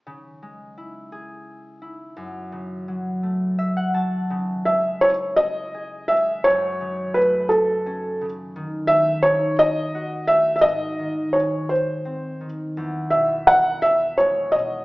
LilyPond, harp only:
<<
  \new Staff \with { instrumentName = "Harp" } { \time 6/8 \key cis \minor \tempo 4. = 57 r2. | r2 e''16 fis''16 a''8 | r2. | r2. |
r2. | r2. | r2. | }
  \new Staff \with { instrumentName = "Harp" } { \clef bass \time 6/8 \key cis \minor cis8 gis8 e'8 gis'4 e'8 | fis,8 cis8 fis8 a4 fis8 | cis8 gis8 e'4 gis'8 gis8 | fis,8 cis8 a4 cis'8 cis8 |
dis8 a8 dis'4 fis'8 a8 | gis,8 dis8 gis4 bis8 dis8 | e,8 b,8 e4 gis8 b,8 | }
>>